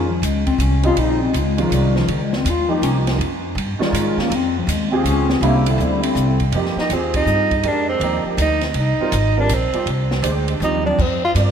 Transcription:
Already playing: F2
0.09 F3
0.22 C#2 G#3, hi-hat pedal, ride
0.46 C4, kick, ride
0.58 C2 C#4, hi-hat pedal, ride
0.83 C#3 G3 C4 D#4 F4, ride
0.96 A#1 D#4, ride
1.23 C4
1.33 C#2, hi-hat pedal, ride
1.38 G#3
1.57 D#3 F3 G#3 C#4 F4, ride
1.70 C2 G3, hi-hat pedal, ride
1.96 F3, snare
2.08 C#2 D#3, ride
2.22 G#3
2.33 snare
2.37 C4
2.45 D#2, hi-hat pedal, ride
2.50 F4
2.68 F3 A#3 D#4 G4
2.82 C2 C#4, hi-hat pedal, ride
3.07 snare, ride
3.18 F2, ride
3.55 G2, ride
3.79 D#3 G3 G#3 C#4 F4, muted upright bass stroke, snare
3.92 G#2, hi-hat pedal, ride
3.97 G#3
4.17 A#3, muted upright bass stroke, snare
4.30 F2, ride
4.35 C4
4.58 F3
4.67 D#2 G#3, hi-hat pedal, ride
4.91 C4 F4 G4 G#4
5.04 C#2 C#4, hi-hat pedal, ride
5.29 C4, snare
5.41 C2 D3 G3 A#3 C4 E4, ride
5.66 D3, ride
5.78 D2 D3 G3 C4 E4, hi-hat pedal
6.02 C4, ride
6.15 C2, hi-hat pedal
6.40 kick, ride
6.52 F2 F3 A#3 D#4 G4, ride
6.66 snare
6.76 muted upright bass stroke, snare
6.80 D#4
6.90 D#2 C4 F4 G4 G#4, hi-hat pedal, ride
7.14 D#4, kick, ride
7.26 G2, hi-hat pedal
7.51 kick, ride
7.63 F2 G#3 D4 G4 A#4, ride
7.67 D4
7.89 C4
8.00 D#2 F3 A#3 D#4 G4, ride
8.24 muted upright bass stroke
8.37 D2, hi-hat pedal, ride
8.42 D#4
8.61 snare, ride
8.65 C4
8.74 C2, ride
8.80 D#4
8.98 G3 C4 F4 A#4, muted upright bass stroke
9.12 G#1, hi-hat pedal, ride
9.37 G3 C4 D4 F4 A#4
9.49 A#1, hi-hat pedal, ride
9.54 C4
9.72 G3 C4 F4 G4, muted upright bass stroke, ride
9.86 C2, ride
10.11 snare
10.22 D2 G#3 D4 G4 C5, hi-hat pedal, ride
10.48 ride
10.60 D#2 G3 C4 D#4 F4 G4, hi-hat pedal, high tom
10.74 high tom
10.86 D4, high tom
10.98 F2 C4, kick, crash
11.24 F4
11.35 G2 C4 F4 A#4 D5, hi-hat pedal, ride

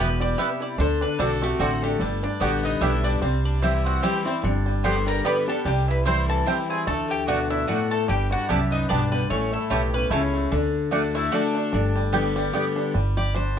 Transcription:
Already playing: E1 E2 G3 E4 G4
0.00 B2 B4
0.20 G3 D5
0.38 C3 B3 E4 G4 B4 E5 G5
0.61 E4 D5
0.78 D2 D3 D4 C5
1.01 D4 B4
1.19 B1 D3 A3 C4 D4 F#4 A4 D5 A5
1.42 A3 C4 F#4 G4
1.59 A1 D3 A3 C4 F#4 D5 A5
1.83 D4 G4
1.99 G1 G2 G3 A4
2.23 D4 D5
2.40 A1 D3 G3 B3 F#4 G4 D5 F#5 G5
2.63 B3 D#4 D#5
2.81 B1 D3 G3 B3 D4 E4 G4 D5 E5 G5
3.04 G3 D4 D5
3.22 C2 C3 G3 C4 C5
3.44 D4 D5
3.62 E3 G3 C4 E4 G4 C5 E5 G5
3.85 C4 F#4 F#5
4.02 E3 G3 C4 E4 G4 C5 G5
4.25 G3 C4 E4 C5
4.43 G1 G2 D4
4.66 G3
4.83 D3 G3 B3 G4 C5 D5 G5 C6
5.07 G3 A#4 A#5
5.25 D3 G3 B3 G4 B4 D5 G5 B5
5.47 B3 D4 G4 A4 A5
5.65 C2 C3 G3 G4 G5
5.88 E4 B4 B5
6.05 E3 G3 C4 E4 C5 G5 C6
6.28 E3 A4 A5
6.46 E3 G3 C4 E4 G4 C5 G5
6.70 C4 G#4 G#5
6.87 D2 D3 A3 A4 A5
7.10 G4 G5
7.27 B2 A3 D4 F#4 D5 F#5
7.50 D4 E4 E5
7.67 A2 A3 D4 F#4 D5 F#5
7.90 A3 A4 A5
8.08 G1 G2 G3 G4 G5
8.31 D4 F#4 F#5
8.49 C2 F#2 B3 E4 G4 D5 E5 A5
8.71 B3 D#4 D#5
8.89 B1 G2 B3 D4 G4 D5 A5
9.12 G3 B3 B4
9.30 A1 A2 A3 C#4 C#5
9.53 A3 E4 A4
9.70 B1 B2 G3 A3 E4 G4 C#5 A5
9.93 B3 C#4 B4
10.10 C#2 C#3 A3 C#4 E4 C#5 A5
10.34 A3
10.52 D2 D3 D4
10.91 D3 A3 D4 F#4 D5 F#5
11.14 A3 E4 E5
11.31 D3 A3 D4 F#4 D5 F#5
11.55 D4
11.73 G1 G2 D4
11.96 G3
12.12 D3 G3 B3 G4 D5 G5
12.36 G3
12.53 D3 G3 B3 G4 D5 G5
12.76 D4
12.94 G1 G3
13.17 G4 D5
13.34 D4 C5

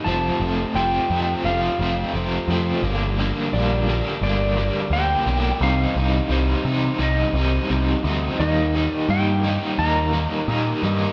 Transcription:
0.04 F1 F2 C3 F3 A3 C4 A5
0.40 F1 F2 C3 F3 A3 C4
0.74 F1 F2 C3 F3 A3 C4 G5
1.10 F2 C3 F3 A3 C4
1.44 F1 F2 C3 F3 A3 F5
1.48 C4
1.79 F1 F2 C3 F3 A3 C4
2.13 F1 F2 C3 F3 A3 C4
2.48 F2 C3 F3 A3 C4
2.82 G1 G2 D3 G3 A#3 D4
3.19 G2 D3 G3 A#3 D4
3.53 A#1 G2 D3 G3 A#3 D4 D5
3.89 G2 D3 G3 A#3 D4
4.21 G1 G2 D3 G3 A#3 D4 D5
4.57 G2 D3 G3 A#3 D4
4.90 D2 G2 D3 G3 A#3 G5
4.94 D4
5.26 B1 G2 D3 G3 A#3 D4
5.61 C2 C3 G3 C4 D#4 F5
5.95 C2 C3 G3 C4 D#4
6.29 C2 C3 G3 C4 D#4
6.65 C3 G3 C4 D#4
6.99 C2 C3 G3 C4 D#4 D#5
7.33 C2 C3 G3 C4 D#4
7.70 C2 C3 G3 C4 D#4
8.04 D2 C3 G3 C4 D#4
8.39 D#2 D#3 G3 A#3 D#4 D#5
8.75 D#3 G3 A#3 D#4
8.90 D5
9.09 G2 D#3 G3 A#3 D#4 G5
9.44 D#3 G3 A#3 D#4
9.78 D#2 D#3 G3 A#3 D#4 A#5
10.13 D#3 G3 A#3 D#4
10.48 A#2 D#3 G3 A#3 D#4
10.83 G2 D#3 G3 A#3 D#4

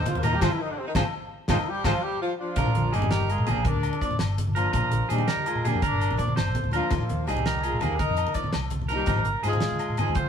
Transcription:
Already playing: C5
0.00 D#3 D#4
0.06 F3 F4, closed hi-hat, muted conga
0.15 D#2 A#3, high conga
0.23 D#3 F3 A#3 D#4 A#4, closed hi-hat, low conga, low agogo
0.33 G3 G4
0.41 G#1 F3 G#3 C4 F4 G#4 C5, kick, snare, muted conga, low agogo
0.52 E3 E4
0.61 D#3 D#4
0.70 D3 D4
0.78 C3 C4
0.87 D#3 D#4
0.95 G#1 F3 G#3 C4 F4 G#4 C5, kick, snare, muted conga, low agogo
1.48 G#1 D#3 F3 G#3 C4 D#4 F4 G#4 C5, kick, snare, muted conga, low agogo
1.68 G3 G4
1.85 G#1 F3 G#3 C4 F4 G#4 C5, kick, snare, muted conga, low agogo
2.02 G3 G4
2.21 F3 F4
2.39 F3 D4 F4
2.56 A#1 F3 A#3 D4 A#4, kick, closed hi-hat, muted conga, low agogo
2.66 low conga
2.75 A#1, closed hi-hat, high conga
2.84 low conga
2.92 G1 G3 A#3 D4 D#4 G4 G#4, muted steel-string acoustic guitar stroke, closed hi-hat, low conga, low agogo
3.02 muted conga, low conga
3.11 A#4, snare, closed hi-hat
3.20 high conga
3.29 G#3 F4 G#4, closed hi-hat, low agogo
3.38 low conga
3.47 A#1 F3 A#3 D4 G4 G#4 A#4, closed hi-hat, muted conga, low agogo
3.56 A#1
3.65 D4 A#4 D5, muted clean electric guitar stroke, kick, closed hi-hat, high conga
3.74 D2, low conga
3.83 closed hi-hat, low agogo
3.93 muted conga
4.01 F3 A#3 D4 D5, kick, closed hi-hat
4.11 high conga, low conga
4.19 G1, muted clean electric guitar stroke, snare, closed hi-hat, low agogo
4.38 closed hi-hat, muted conga
4.47 high conga, low conga
4.55 F3 A#3 D4 F4 A#4, closed hi-hat, low conga, low agogo
4.73 A#2 A#4, kick, closed hi-hat, muted conga, low agogo
4.82 low conga
4.92 A#1, closed hi-hat, high conga
5.01 low conga
5.09 A#2 F3 G3 A#3 D4 D#4 G4 G#4, closed hi-hat, low conga, low agogo
5.18 muted conga
5.27 A#4, snare, closed hi-hat
5.37 high conga
5.46 G#3 F4 G#4, closed hi-hat, low agogo
5.55 low conga
5.65 A#2 F3 A#3 D4 G4 G#4 A#4, closed hi-hat, muted conga, low agogo
5.74 F2
5.82 D4 A#4 D5, kick, closed hi-hat, high conga
5.91 G1, low conga
6.00 closed hi-hat, low agogo
6.11 A#1, muted conga
6.17 F3 A#3 D4 D5, kick, closed hi-hat
6.28 A#2, high conga, low conga
6.36 G1 C5, snare, closed hi-hat, low agogo
6.48 A#1
6.55 closed hi-hat, muted conga
6.64 D2, high conga, low conga
6.71 F3 A#3 D4 F4 A#4, closed hi-hat, low conga, low agogo
6.76 A#3
6.90 D#2 F3 A#3 D#4, muted clean electric guitar stroke, kick, closed hi-hat, muted conga, low agogo
7.00 low conga
7.09 D#2, closed hi-hat, high conga
7.18 low conga
7.26 C2 F3 G3 A#3 D#4 G4 G#4, closed hi-hat, low conga, low agogo
7.37 muted conga, low conga
7.46 A#4, snare, closed hi-hat
7.54 high conga
7.61 G#3 F4 G#4, closed hi-hat, low agogo
7.72 low conga
7.80 D#2 F3 A#3 D#4 G4 G#4 A#4, closed hi-hat, muted conga, low agogo
7.91 D#2
7.98 D#4 A#4 D#5, kick, closed hi-hat, high conga
8.09 F2, low conga
8.17 closed hi-hat, low agogo
8.27 muted conga
8.34 F3 A#3 D#4 D5, kick, closed hi-hat
8.44 high conga, low conga
8.53 C2, muted clean electric guitar stroke, snare, closed hi-hat, low agogo
8.70 closed hi-hat, muted conga
8.82 high conga, low conga
8.88 F3 A#3 D#4 A#4, closed hi-hat, low conga, low agogo
8.94 G3 G4
9.06 G#1 F3 C4 D#4 A#4, kick, closed hi-hat, muted conga, low agogo
9.16 low conga
9.25 G#1, closed hi-hat, high conga
9.35 low conga
9.43 G#2 F3 G#3 C4 D#4 F4 G#4, closed hi-hat, low agogo
9.53 muted conga, low conga
9.61 snare, closed hi-hat
9.72 high conga, low conga
9.79 closed hi-hat, low agogo
9.90 low conga
9.97 G#2 F3 G#3 C4 D#4 F4 G#4, closed hi-hat, muted conga, low agogo
10.08 D#2
10.15 F3 C4 F4 C5, kick, closed hi-hat, high conga
10.26 F1

